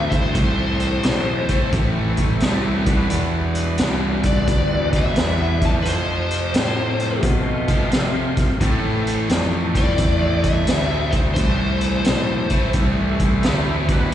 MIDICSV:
0, 0, Header, 1, 7, 480
1, 0, Start_track
1, 0, Key_signature, 0, "minor"
1, 0, Tempo, 688863
1, 245, Time_signature, 4, 2, 24, 8
1, 9855, End_track
2, 0, Start_track
2, 0, Title_t, "Lead electric guitar"
2, 0, Program_c, 0, 29
2, 0, Note_on_c, 0, 76, 102
2, 70, Note_on_c, 0, 72, 78
2, 91, Note_off_c, 0, 76, 0
2, 229, Note_off_c, 0, 72, 0
2, 238, Note_on_c, 0, 72, 65
2, 1173, Note_off_c, 0, 72, 0
2, 2970, Note_on_c, 0, 74, 75
2, 3416, Note_off_c, 0, 74, 0
2, 3456, Note_on_c, 0, 76, 92
2, 3939, Note_on_c, 0, 81, 87
2, 3941, Note_off_c, 0, 76, 0
2, 3973, Note_off_c, 0, 81, 0
2, 4058, Note_on_c, 0, 71, 59
2, 4086, Note_off_c, 0, 71, 0
2, 4103, Note_on_c, 0, 72, 75
2, 5024, Note_off_c, 0, 72, 0
2, 6809, Note_on_c, 0, 74, 87
2, 7271, Note_on_c, 0, 76, 100
2, 7298, Note_off_c, 0, 74, 0
2, 7739, Note_on_c, 0, 72, 69
2, 7770, Note_off_c, 0, 76, 0
2, 7786, Note_off_c, 0, 72, 0
2, 7900, Note_on_c, 0, 72, 67
2, 8845, Note_off_c, 0, 72, 0
2, 9855, End_track
3, 0, Start_track
3, 0, Title_t, "Tonewheel organ"
3, 0, Program_c, 1, 16
3, 0, Note_on_c, 1, 57, 68
3, 0, Note_on_c, 1, 60, 63
3, 0, Note_on_c, 1, 64, 64
3, 0, Note_on_c, 1, 72, 60
3, 222, Note_off_c, 1, 64, 0
3, 223, Note_off_c, 1, 60, 0
3, 224, Note_off_c, 1, 57, 0
3, 225, Note_off_c, 1, 72, 0
3, 245, Note_on_c, 1, 60, 62
3, 255, Note_on_c, 1, 64, 63
3, 257, Note_on_c, 1, 57, 64
3, 1984, Note_off_c, 1, 60, 0
3, 1986, Note_off_c, 1, 64, 0
3, 1988, Note_off_c, 1, 57, 0
3, 1993, Note_on_c, 1, 55, 65
3, 1994, Note_on_c, 1, 59, 67
3, 1994, Note_on_c, 1, 64, 60
3, 1994, Note_on_c, 1, 71, 59
3, 3895, Note_off_c, 1, 55, 0
3, 3895, Note_off_c, 1, 59, 0
3, 3895, Note_off_c, 1, 71, 0
3, 3896, Note_off_c, 1, 64, 0
3, 3902, Note_on_c, 1, 72, 60
3, 3903, Note_on_c, 1, 57, 70
3, 3907, Note_on_c, 1, 65, 70
3, 5972, Note_off_c, 1, 57, 0
3, 5972, Note_off_c, 1, 72, 0
3, 5975, Note_off_c, 1, 65, 0
3, 6001, Note_on_c, 1, 60, 61
3, 6004, Note_on_c, 1, 57, 65
3, 6004, Note_on_c, 1, 64, 68
3, 6005, Note_on_c, 1, 72, 64
3, 7904, Note_off_c, 1, 60, 0
3, 7905, Note_off_c, 1, 57, 0
3, 7905, Note_off_c, 1, 64, 0
3, 7905, Note_off_c, 1, 72, 0
3, 7933, Note_on_c, 1, 60, 63
3, 7941, Note_on_c, 1, 57, 67
3, 7944, Note_on_c, 1, 64, 65
3, 9673, Note_off_c, 1, 60, 0
3, 9674, Note_off_c, 1, 57, 0
3, 9675, Note_off_c, 1, 64, 0
3, 9679, Note_on_c, 1, 71, 65
3, 9684, Note_on_c, 1, 55, 64
3, 9684, Note_on_c, 1, 59, 67
3, 9687, Note_on_c, 1, 64, 69
3, 9855, Note_off_c, 1, 55, 0
3, 9855, Note_off_c, 1, 59, 0
3, 9855, Note_off_c, 1, 64, 0
3, 9855, Note_off_c, 1, 71, 0
3, 9855, End_track
4, 0, Start_track
4, 0, Title_t, "Overdriven electric guitar"
4, 0, Program_c, 2, 29
4, 0, Note_on_c, 2, 45, 70
4, 0, Note_on_c, 2, 52, 70
4, 0, Note_on_c, 2, 57, 83
4, 229, Note_off_c, 2, 45, 0
4, 237, Note_on_c, 2, 45, 79
4, 245, Note_off_c, 2, 57, 0
4, 249, Note_off_c, 2, 52, 0
4, 252, Note_on_c, 2, 52, 89
4, 265, Note_on_c, 2, 57, 97
4, 1018, Note_off_c, 2, 45, 0
4, 1030, Note_off_c, 2, 57, 0
4, 1038, Note_on_c, 2, 57, 83
4, 1051, Note_off_c, 2, 52, 0
4, 1054, Note_on_c, 2, 52, 78
4, 1064, Note_on_c, 2, 45, 69
4, 1671, Note_off_c, 2, 45, 0
4, 1673, Note_off_c, 2, 57, 0
4, 1679, Note_on_c, 2, 45, 67
4, 1681, Note_off_c, 2, 52, 0
4, 1695, Note_on_c, 2, 52, 71
4, 1707, Note_on_c, 2, 57, 78
4, 1979, Note_off_c, 2, 45, 0
4, 1986, Note_off_c, 2, 52, 0
4, 1993, Note_off_c, 2, 57, 0
4, 2005, Note_on_c, 2, 40, 80
4, 2018, Note_on_c, 2, 47, 81
4, 2031, Note_on_c, 2, 52, 73
4, 2634, Note_off_c, 2, 40, 0
4, 2642, Note_off_c, 2, 47, 0
4, 2642, Note_on_c, 2, 40, 72
4, 2649, Note_off_c, 2, 52, 0
4, 2653, Note_on_c, 2, 47, 67
4, 2666, Note_on_c, 2, 52, 76
4, 3419, Note_off_c, 2, 40, 0
4, 3424, Note_off_c, 2, 47, 0
4, 3427, Note_off_c, 2, 52, 0
4, 3436, Note_on_c, 2, 52, 84
4, 3453, Note_on_c, 2, 47, 68
4, 3464, Note_on_c, 2, 40, 62
4, 3897, Note_off_c, 2, 52, 0
4, 3906, Note_off_c, 2, 47, 0
4, 3912, Note_off_c, 2, 40, 0
4, 3916, Note_on_c, 2, 41, 83
4, 3926, Note_on_c, 2, 48, 84
4, 3936, Note_on_c, 2, 53, 101
4, 4546, Note_off_c, 2, 41, 0
4, 4555, Note_off_c, 2, 48, 0
4, 4555, Note_on_c, 2, 41, 62
4, 4560, Note_off_c, 2, 53, 0
4, 4568, Note_on_c, 2, 48, 71
4, 4581, Note_on_c, 2, 53, 72
4, 5335, Note_off_c, 2, 41, 0
4, 5342, Note_off_c, 2, 48, 0
4, 5343, Note_off_c, 2, 53, 0
4, 5351, Note_on_c, 2, 53, 85
4, 5367, Note_on_c, 2, 48, 75
4, 5376, Note_on_c, 2, 41, 58
4, 5815, Note_off_c, 2, 53, 0
4, 5823, Note_off_c, 2, 48, 0
4, 5828, Note_off_c, 2, 41, 0
4, 5995, Note_on_c, 2, 45, 75
4, 6008, Note_on_c, 2, 52, 83
4, 6021, Note_on_c, 2, 57, 95
4, 6788, Note_off_c, 2, 57, 0
4, 6791, Note_on_c, 2, 57, 77
4, 6799, Note_off_c, 2, 52, 0
4, 6802, Note_on_c, 2, 52, 71
4, 6812, Note_off_c, 2, 45, 0
4, 6815, Note_on_c, 2, 45, 69
4, 7424, Note_off_c, 2, 45, 0
4, 7429, Note_off_c, 2, 57, 0
4, 7432, Note_on_c, 2, 45, 72
4, 7444, Note_off_c, 2, 52, 0
4, 7447, Note_on_c, 2, 52, 74
4, 7457, Note_on_c, 2, 57, 84
4, 7908, Note_off_c, 2, 45, 0
4, 7916, Note_on_c, 2, 45, 90
4, 7920, Note_off_c, 2, 57, 0
4, 7928, Note_off_c, 2, 52, 0
4, 7931, Note_on_c, 2, 52, 87
4, 7942, Note_on_c, 2, 57, 92
4, 8698, Note_off_c, 2, 45, 0
4, 8703, Note_off_c, 2, 57, 0
4, 8711, Note_on_c, 2, 57, 80
4, 8721, Note_off_c, 2, 52, 0
4, 8724, Note_on_c, 2, 52, 80
4, 8736, Note_on_c, 2, 45, 69
4, 9348, Note_off_c, 2, 45, 0
4, 9351, Note_off_c, 2, 57, 0
4, 9357, Note_off_c, 2, 52, 0
4, 9357, Note_on_c, 2, 45, 62
4, 9372, Note_on_c, 2, 52, 73
4, 9380, Note_on_c, 2, 57, 81
4, 9659, Note_off_c, 2, 45, 0
4, 9667, Note_off_c, 2, 52, 0
4, 9671, Note_off_c, 2, 57, 0
4, 9674, Note_on_c, 2, 40, 87
4, 9688, Note_on_c, 2, 47, 92
4, 9697, Note_on_c, 2, 52, 86
4, 9855, Note_off_c, 2, 40, 0
4, 9855, Note_off_c, 2, 47, 0
4, 9855, Note_off_c, 2, 52, 0
4, 9855, End_track
5, 0, Start_track
5, 0, Title_t, "Fingered electric bass"
5, 0, Program_c, 3, 33
5, 0, Note_on_c, 3, 38, 96
5, 229, Note_off_c, 3, 38, 0
5, 246, Note_on_c, 3, 36, 82
5, 711, Note_off_c, 3, 36, 0
5, 720, Note_on_c, 3, 35, 80
5, 1016, Note_off_c, 3, 35, 0
5, 1203, Note_on_c, 3, 33, 87
5, 1669, Note_off_c, 3, 33, 0
5, 1685, Note_on_c, 3, 36, 99
5, 2150, Note_off_c, 3, 36, 0
5, 2166, Note_on_c, 3, 40, 73
5, 2630, Note_off_c, 3, 40, 0
5, 2646, Note_on_c, 3, 36, 80
5, 3109, Note_off_c, 3, 36, 0
5, 3120, Note_on_c, 3, 38, 80
5, 3586, Note_off_c, 3, 38, 0
5, 3600, Note_on_c, 3, 40, 90
5, 4066, Note_off_c, 3, 40, 0
5, 4082, Note_on_c, 3, 41, 78
5, 4547, Note_off_c, 3, 41, 0
5, 4561, Note_on_c, 3, 45, 70
5, 5026, Note_off_c, 3, 45, 0
5, 5040, Note_on_c, 3, 47, 74
5, 5506, Note_off_c, 3, 47, 0
5, 5522, Note_on_c, 3, 48, 92
5, 5987, Note_off_c, 3, 48, 0
5, 5997, Note_on_c, 3, 45, 75
5, 6465, Note_off_c, 3, 45, 0
5, 6475, Note_on_c, 3, 41, 74
5, 6944, Note_off_c, 3, 41, 0
5, 6961, Note_on_c, 3, 40, 79
5, 7427, Note_off_c, 3, 40, 0
5, 7439, Note_on_c, 3, 38, 88
5, 7907, Note_off_c, 3, 38, 0
5, 7918, Note_on_c, 3, 36, 83
5, 8387, Note_off_c, 3, 36, 0
5, 8403, Note_on_c, 3, 35, 77
5, 8698, Note_off_c, 3, 35, 0
5, 8877, Note_on_c, 3, 36, 82
5, 9347, Note_off_c, 3, 36, 0
5, 9363, Note_on_c, 3, 38, 90
5, 9831, Note_off_c, 3, 38, 0
5, 9855, End_track
6, 0, Start_track
6, 0, Title_t, "Muted fingered electric bass strokes"
6, 1041, Note_on_c, 9, 29, 35
6, 1111, Note_off_c, 9, 29, 0
6, 8713, Note_on_c, 9, 29, 38
6, 8783, Note_off_c, 9, 29, 0
6, 9855, End_track
7, 0, Start_track
7, 0, Title_t, "Drums"
7, 81, Note_on_c, 9, 36, 79
7, 81, Note_on_c, 9, 42, 52
7, 151, Note_off_c, 9, 36, 0
7, 151, Note_off_c, 9, 42, 0
7, 242, Note_on_c, 9, 42, 69
7, 244, Note_on_c, 9, 36, 99
7, 312, Note_off_c, 9, 42, 0
7, 313, Note_off_c, 9, 36, 0
7, 555, Note_on_c, 9, 42, 52
7, 625, Note_off_c, 9, 42, 0
7, 719, Note_on_c, 9, 42, 81
7, 731, Note_on_c, 9, 38, 103
7, 789, Note_off_c, 9, 42, 0
7, 800, Note_off_c, 9, 38, 0
7, 1035, Note_on_c, 9, 42, 55
7, 1040, Note_on_c, 9, 36, 76
7, 1104, Note_off_c, 9, 42, 0
7, 1110, Note_off_c, 9, 36, 0
7, 1202, Note_on_c, 9, 42, 66
7, 1204, Note_on_c, 9, 36, 105
7, 1271, Note_off_c, 9, 42, 0
7, 1274, Note_off_c, 9, 36, 0
7, 1512, Note_on_c, 9, 42, 56
7, 1519, Note_on_c, 9, 36, 74
7, 1582, Note_off_c, 9, 42, 0
7, 1588, Note_off_c, 9, 36, 0
7, 1674, Note_on_c, 9, 42, 63
7, 1686, Note_on_c, 9, 38, 102
7, 1744, Note_off_c, 9, 42, 0
7, 1756, Note_off_c, 9, 38, 0
7, 1994, Note_on_c, 9, 42, 55
7, 1997, Note_on_c, 9, 36, 99
7, 2064, Note_off_c, 9, 42, 0
7, 2067, Note_off_c, 9, 36, 0
7, 2159, Note_on_c, 9, 42, 85
7, 2229, Note_off_c, 9, 42, 0
7, 2472, Note_on_c, 9, 42, 62
7, 2541, Note_off_c, 9, 42, 0
7, 2631, Note_on_c, 9, 42, 90
7, 2643, Note_on_c, 9, 38, 110
7, 2701, Note_off_c, 9, 42, 0
7, 2713, Note_off_c, 9, 38, 0
7, 2950, Note_on_c, 9, 42, 65
7, 2955, Note_on_c, 9, 36, 80
7, 3019, Note_off_c, 9, 42, 0
7, 3025, Note_off_c, 9, 36, 0
7, 3117, Note_on_c, 9, 42, 78
7, 3119, Note_on_c, 9, 36, 96
7, 3187, Note_off_c, 9, 42, 0
7, 3189, Note_off_c, 9, 36, 0
7, 3432, Note_on_c, 9, 42, 58
7, 3435, Note_on_c, 9, 36, 78
7, 3502, Note_off_c, 9, 42, 0
7, 3505, Note_off_c, 9, 36, 0
7, 3594, Note_on_c, 9, 42, 70
7, 3606, Note_on_c, 9, 38, 100
7, 3663, Note_off_c, 9, 42, 0
7, 3675, Note_off_c, 9, 38, 0
7, 3913, Note_on_c, 9, 42, 60
7, 3914, Note_on_c, 9, 36, 100
7, 3982, Note_off_c, 9, 42, 0
7, 3983, Note_off_c, 9, 36, 0
7, 4078, Note_on_c, 9, 42, 79
7, 4148, Note_off_c, 9, 42, 0
7, 4393, Note_on_c, 9, 42, 51
7, 4463, Note_off_c, 9, 42, 0
7, 4556, Note_on_c, 9, 42, 81
7, 4568, Note_on_c, 9, 38, 114
7, 4626, Note_off_c, 9, 42, 0
7, 4638, Note_off_c, 9, 38, 0
7, 4874, Note_on_c, 9, 42, 53
7, 4944, Note_off_c, 9, 42, 0
7, 5034, Note_on_c, 9, 42, 78
7, 5037, Note_on_c, 9, 36, 106
7, 5104, Note_off_c, 9, 42, 0
7, 5107, Note_off_c, 9, 36, 0
7, 5351, Note_on_c, 9, 42, 56
7, 5354, Note_on_c, 9, 36, 81
7, 5421, Note_off_c, 9, 42, 0
7, 5424, Note_off_c, 9, 36, 0
7, 5515, Note_on_c, 9, 42, 68
7, 5527, Note_on_c, 9, 38, 94
7, 5584, Note_off_c, 9, 42, 0
7, 5596, Note_off_c, 9, 38, 0
7, 5830, Note_on_c, 9, 42, 55
7, 5834, Note_on_c, 9, 36, 79
7, 5842, Note_on_c, 9, 38, 28
7, 5899, Note_off_c, 9, 42, 0
7, 5904, Note_off_c, 9, 36, 0
7, 5911, Note_off_c, 9, 38, 0
7, 5997, Note_on_c, 9, 42, 83
7, 5998, Note_on_c, 9, 36, 100
7, 6067, Note_off_c, 9, 42, 0
7, 6068, Note_off_c, 9, 36, 0
7, 6318, Note_on_c, 9, 42, 53
7, 6388, Note_off_c, 9, 42, 0
7, 6477, Note_on_c, 9, 42, 89
7, 6488, Note_on_c, 9, 38, 114
7, 6546, Note_off_c, 9, 42, 0
7, 6558, Note_off_c, 9, 38, 0
7, 6795, Note_on_c, 9, 36, 84
7, 6795, Note_on_c, 9, 42, 64
7, 6865, Note_off_c, 9, 36, 0
7, 6865, Note_off_c, 9, 42, 0
7, 6952, Note_on_c, 9, 42, 77
7, 6958, Note_on_c, 9, 36, 93
7, 7022, Note_off_c, 9, 42, 0
7, 7028, Note_off_c, 9, 36, 0
7, 7271, Note_on_c, 9, 42, 62
7, 7274, Note_on_c, 9, 36, 71
7, 7341, Note_off_c, 9, 42, 0
7, 7344, Note_off_c, 9, 36, 0
7, 7434, Note_on_c, 9, 42, 77
7, 7446, Note_on_c, 9, 38, 90
7, 7504, Note_off_c, 9, 42, 0
7, 7515, Note_off_c, 9, 38, 0
7, 7750, Note_on_c, 9, 42, 64
7, 7755, Note_on_c, 9, 36, 84
7, 7820, Note_off_c, 9, 42, 0
7, 7825, Note_off_c, 9, 36, 0
7, 7915, Note_on_c, 9, 42, 86
7, 7919, Note_on_c, 9, 36, 107
7, 7985, Note_off_c, 9, 42, 0
7, 7989, Note_off_c, 9, 36, 0
7, 8228, Note_on_c, 9, 42, 61
7, 8298, Note_off_c, 9, 42, 0
7, 8393, Note_on_c, 9, 42, 85
7, 8405, Note_on_c, 9, 38, 108
7, 8462, Note_off_c, 9, 42, 0
7, 8474, Note_off_c, 9, 38, 0
7, 8707, Note_on_c, 9, 42, 62
7, 8714, Note_on_c, 9, 36, 72
7, 8777, Note_off_c, 9, 42, 0
7, 8784, Note_off_c, 9, 36, 0
7, 8871, Note_on_c, 9, 42, 77
7, 8878, Note_on_c, 9, 36, 94
7, 8940, Note_off_c, 9, 42, 0
7, 8948, Note_off_c, 9, 36, 0
7, 9194, Note_on_c, 9, 42, 57
7, 9196, Note_on_c, 9, 36, 71
7, 9264, Note_off_c, 9, 42, 0
7, 9266, Note_off_c, 9, 36, 0
7, 9357, Note_on_c, 9, 42, 68
7, 9369, Note_on_c, 9, 38, 102
7, 9427, Note_off_c, 9, 42, 0
7, 9438, Note_off_c, 9, 38, 0
7, 9675, Note_on_c, 9, 42, 58
7, 9676, Note_on_c, 9, 36, 96
7, 9745, Note_off_c, 9, 42, 0
7, 9746, Note_off_c, 9, 36, 0
7, 9855, End_track
0, 0, End_of_file